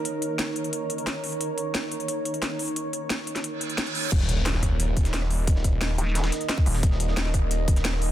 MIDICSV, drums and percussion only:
0, 0, Header, 1, 2, 480
1, 0, Start_track
1, 0, Tempo, 338983
1, 72, Time_signature, 4, 2, 24, 8
1, 11497, End_track
2, 0, Start_track
2, 0, Title_t, "Drums"
2, 72, Note_on_c, 9, 42, 89
2, 214, Note_off_c, 9, 42, 0
2, 312, Note_on_c, 9, 42, 63
2, 453, Note_off_c, 9, 42, 0
2, 551, Note_on_c, 9, 38, 109
2, 551, Note_on_c, 9, 42, 87
2, 693, Note_off_c, 9, 38, 0
2, 693, Note_off_c, 9, 42, 0
2, 791, Note_on_c, 9, 42, 63
2, 911, Note_off_c, 9, 42, 0
2, 911, Note_on_c, 9, 42, 35
2, 1032, Note_off_c, 9, 42, 0
2, 1032, Note_on_c, 9, 42, 91
2, 1174, Note_off_c, 9, 42, 0
2, 1272, Note_on_c, 9, 42, 64
2, 1392, Note_off_c, 9, 42, 0
2, 1392, Note_on_c, 9, 42, 35
2, 1512, Note_off_c, 9, 42, 0
2, 1512, Note_on_c, 9, 38, 112
2, 1512, Note_on_c, 9, 42, 89
2, 1653, Note_off_c, 9, 38, 0
2, 1653, Note_off_c, 9, 42, 0
2, 1751, Note_on_c, 9, 46, 79
2, 1872, Note_on_c, 9, 42, 35
2, 1893, Note_off_c, 9, 46, 0
2, 1991, Note_off_c, 9, 42, 0
2, 1991, Note_on_c, 9, 42, 90
2, 2133, Note_off_c, 9, 42, 0
2, 2232, Note_on_c, 9, 42, 65
2, 2374, Note_off_c, 9, 42, 0
2, 2472, Note_on_c, 9, 38, 107
2, 2472, Note_on_c, 9, 42, 93
2, 2614, Note_off_c, 9, 38, 0
2, 2614, Note_off_c, 9, 42, 0
2, 2712, Note_on_c, 9, 42, 67
2, 2832, Note_off_c, 9, 42, 0
2, 2832, Note_on_c, 9, 42, 37
2, 2951, Note_off_c, 9, 42, 0
2, 2951, Note_on_c, 9, 42, 92
2, 3093, Note_off_c, 9, 42, 0
2, 3192, Note_on_c, 9, 42, 67
2, 3312, Note_off_c, 9, 42, 0
2, 3312, Note_on_c, 9, 42, 36
2, 3432, Note_off_c, 9, 42, 0
2, 3432, Note_on_c, 9, 38, 110
2, 3432, Note_on_c, 9, 42, 92
2, 3573, Note_off_c, 9, 38, 0
2, 3573, Note_off_c, 9, 42, 0
2, 3672, Note_on_c, 9, 46, 83
2, 3792, Note_on_c, 9, 42, 36
2, 3813, Note_off_c, 9, 46, 0
2, 3912, Note_off_c, 9, 42, 0
2, 3912, Note_on_c, 9, 42, 92
2, 4054, Note_off_c, 9, 42, 0
2, 4152, Note_on_c, 9, 42, 66
2, 4294, Note_off_c, 9, 42, 0
2, 4392, Note_on_c, 9, 38, 109
2, 4392, Note_on_c, 9, 42, 94
2, 4533, Note_off_c, 9, 38, 0
2, 4533, Note_off_c, 9, 42, 0
2, 4632, Note_on_c, 9, 42, 70
2, 4752, Note_off_c, 9, 42, 0
2, 4752, Note_on_c, 9, 38, 34
2, 4752, Note_on_c, 9, 42, 38
2, 4872, Note_off_c, 9, 42, 0
2, 4872, Note_on_c, 9, 42, 94
2, 4893, Note_off_c, 9, 38, 0
2, 5014, Note_off_c, 9, 42, 0
2, 5112, Note_on_c, 9, 42, 67
2, 5232, Note_off_c, 9, 42, 0
2, 5232, Note_on_c, 9, 42, 37
2, 5352, Note_off_c, 9, 42, 0
2, 5352, Note_on_c, 9, 38, 109
2, 5352, Note_on_c, 9, 42, 94
2, 5472, Note_off_c, 9, 42, 0
2, 5472, Note_on_c, 9, 42, 37
2, 5493, Note_off_c, 9, 38, 0
2, 5592, Note_on_c, 9, 46, 79
2, 5613, Note_off_c, 9, 42, 0
2, 5712, Note_on_c, 9, 42, 36
2, 5733, Note_off_c, 9, 46, 0
2, 5832, Note_off_c, 9, 42, 0
2, 5832, Note_on_c, 9, 36, 122
2, 5832, Note_on_c, 9, 42, 91
2, 5832, Note_on_c, 9, 49, 105
2, 5952, Note_on_c, 9, 38, 42
2, 5973, Note_off_c, 9, 49, 0
2, 5974, Note_off_c, 9, 36, 0
2, 5974, Note_off_c, 9, 42, 0
2, 6072, Note_on_c, 9, 42, 71
2, 6094, Note_off_c, 9, 38, 0
2, 6192, Note_on_c, 9, 38, 45
2, 6214, Note_off_c, 9, 42, 0
2, 6312, Note_off_c, 9, 38, 0
2, 6312, Note_on_c, 9, 38, 121
2, 6312, Note_on_c, 9, 42, 96
2, 6432, Note_off_c, 9, 38, 0
2, 6432, Note_on_c, 9, 38, 39
2, 6454, Note_off_c, 9, 42, 0
2, 6552, Note_on_c, 9, 36, 63
2, 6552, Note_on_c, 9, 37, 38
2, 6552, Note_on_c, 9, 42, 71
2, 6574, Note_off_c, 9, 38, 0
2, 6694, Note_off_c, 9, 36, 0
2, 6694, Note_off_c, 9, 37, 0
2, 6694, Note_off_c, 9, 42, 0
2, 6792, Note_on_c, 9, 42, 100
2, 6934, Note_off_c, 9, 42, 0
2, 7032, Note_on_c, 9, 36, 106
2, 7032, Note_on_c, 9, 42, 70
2, 7152, Note_off_c, 9, 42, 0
2, 7152, Note_on_c, 9, 38, 49
2, 7152, Note_on_c, 9, 42, 39
2, 7174, Note_off_c, 9, 36, 0
2, 7272, Note_off_c, 9, 38, 0
2, 7272, Note_off_c, 9, 42, 0
2, 7272, Note_on_c, 9, 38, 122
2, 7272, Note_on_c, 9, 42, 99
2, 7392, Note_off_c, 9, 38, 0
2, 7392, Note_on_c, 9, 37, 60
2, 7392, Note_on_c, 9, 38, 38
2, 7414, Note_off_c, 9, 42, 0
2, 7512, Note_on_c, 9, 42, 71
2, 7512, Note_on_c, 9, 46, 78
2, 7533, Note_off_c, 9, 38, 0
2, 7534, Note_off_c, 9, 37, 0
2, 7653, Note_off_c, 9, 42, 0
2, 7654, Note_off_c, 9, 46, 0
2, 7752, Note_on_c, 9, 42, 95
2, 7753, Note_on_c, 9, 36, 120
2, 7871, Note_on_c, 9, 38, 40
2, 7894, Note_off_c, 9, 36, 0
2, 7894, Note_off_c, 9, 42, 0
2, 7991, Note_on_c, 9, 42, 67
2, 7992, Note_off_c, 9, 42, 0
2, 7992, Note_on_c, 9, 36, 63
2, 7992, Note_on_c, 9, 42, 69
2, 8013, Note_off_c, 9, 38, 0
2, 8134, Note_off_c, 9, 36, 0
2, 8134, Note_off_c, 9, 42, 0
2, 8231, Note_on_c, 9, 38, 123
2, 8231, Note_on_c, 9, 42, 91
2, 8232, Note_off_c, 9, 38, 0
2, 8232, Note_off_c, 9, 42, 0
2, 8232, Note_on_c, 9, 38, 123
2, 8232, Note_on_c, 9, 42, 94
2, 8374, Note_off_c, 9, 38, 0
2, 8374, Note_off_c, 9, 42, 0
2, 8472, Note_on_c, 9, 42, 70
2, 8473, Note_off_c, 9, 42, 0
2, 8473, Note_on_c, 9, 42, 70
2, 8614, Note_off_c, 9, 42, 0
2, 8712, Note_on_c, 9, 38, 105
2, 8712, Note_on_c, 9, 42, 97
2, 8832, Note_off_c, 9, 38, 0
2, 8832, Note_off_c, 9, 42, 0
2, 8832, Note_on_c, 9, 38, 107
2, 8832, Note_on_c, 9, 42, 82
2, 8952, Note_off_c, 9, 38, 0
2, 8952, Note_off_c, 9, 42, 0
2, 8952, Note_on_c, 9, 38, 56
2, 8952, Note_on_c, 9, 42, 69
2, 8953, Note_off_c, 9, 42, 0
2, 8953, Note_on_c, 9, 42, 69
2, 9072, Note_off_c, 9, 42, 0
2, 9072, Note_on_c, 9, 42, 38
2, 9093, Note_off_c, 9, 38, 0
2, 9192, Note_off_c, 9, 42, 0
2, 9192, Note_on_c, 9, 38, 121
2, 9192, Note_on_c, 9, 42, 91
2, 9193, Note_off_c, 9, 38, 0
2, 9193, Note_off_c, 9, 42, 0
2, 9193, Note_on_c, 9, 38, 127
2, 9193, Note_on_c, 9, 42, 98
2, 9312, Note_on_c, 9, 36, 108
2, 9334, Note_off_c, 9, 38, 0
2, 9334, Note_off_c, 9, 42, 0
2, 9432, Note_on_c, 9, 42, 71
2, 9433, Note_on_c, 9, 37, 35
2, 9433, Note_on_c, 9, 46, 76
2, 9454, Note_off_c, 9, 36, 0
2, 9551, Note_on_c, 9, 38, 51
2, 9573, Note_off_c, 9, 42, 0
2, 9575, Note_off_c, 9, 37, 0
2, 9575, Note_off_c, 9, 46, 0
2, 9671, Note_on_c, 9, 42, 89
2, 9672, Note_on_c, 9, 36, 125
2, 9673, Note_off_c, 9, 42, 0
2, 9673, Note_on_c, 9, 42, 92
2, 9693, Note_off_c, 9, 38, 0
2, 9791, Note_on_c, 9, 38, 41
2, 9814, Note_off_c, 9, 36, 0
2, 9814, Note_off_c, 9, 42, 0
2, 9911, Note_on_c, 9, 42, 71
2, 9912, Note_off_c, 9, 42, 0
2, 9912, Note_on_c, 9, 42, 67
2, 9933, Note_off_c, 9, 38, 0
2, 10032, Note_on_c, 9, 38, 44
2, 10054, Note_off_c, 9, 42, 0
2, 10152, Note_off_c, 9, 38, 0
2, 10152, Note_on_c, 9, 38, 127
2, 10152, Note_on_c, 9, 42, 92
2, 10272, Note_off_c, 9, 38, 0
2, 10272, Note_on_c, 9, 38, 41
2, 10294, Note_off_c, 9, 42, 0
2, 10392, Note_on_c, 9, 36, 68
2, 10392, Note_on_c, 9, 42, 70
2, 10393, Note_off_c, 9, 42, 0
2, 10393, Note_on_c, 9, 37, 37
2, 10393, Note_on_c, 9, 42, 68
2, 10414, Note_off_c, 9, 38, 0
2, 10534, Note_off_c, 9, 36, 0
2, 10534, Note_off_c, 9, 37, 0
2, 10534, Note_off_c, 9, 42, 0
2, 10632, Note_on_c, 9, 42, 90
2, 10774, Note_off_c, 9, 42, 0
2, 10872, Note_on_c, 9, 36, 115
2, 10872, Note_on_c, 9, 42, 71
2, 10992, Note_off_c, 9, 42, 0
2, 10992, Note_on_c, 9, 42, 36
2, 10993, Note_on_c, 9, 38, 49
2, 11014, Note_off_c, 9, 36, 0
2, 11112, Note_off_c, 9, 38, 0
2, 11112, Note_off_c, 9, 42, 0
2, 11112, Note_on_c, 9, 38, 127
2, 11112, Note_on_c, 9, 42, 93
2, 11232, Note_on_c, 9, 37, 58
2, 11233, Note_off_c, 9, 38, 0
2, 11233, Note_on_c, 9, 38, 38
2, 11254, Note_off_c, 9, 42, 0
2, 11352, Note_on_c, 9, 42, 71
2, 11352, Note_on_c, 9, 46, 76
2, 11374, Note_off_c, 9, 37, 0
2, 11374, Note_off_c, 9, 38, 0
2, 11494, Note_off_c, 9, 42, 0
2, 11494, Note_off_c, 9, 46, 0
2, 11497, End_track
0, 0, End_of_file